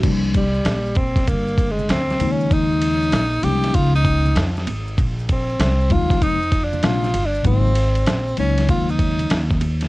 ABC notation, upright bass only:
X:1
M:4/4
L:1/8
Q:"Swing 16ths" 1/4=97
K:Cphr
V:1 name="Upright bass" clef=bass
C,,2 B,,,2 G,,,2 =D,, E,,- | E,,2 B,,, C,, D,,2 F,, A,,, | B,,,2 C,, E,, F,,2 B,,, G,,, | A,,,2 B,,, D,, E,,2 E,,2 |]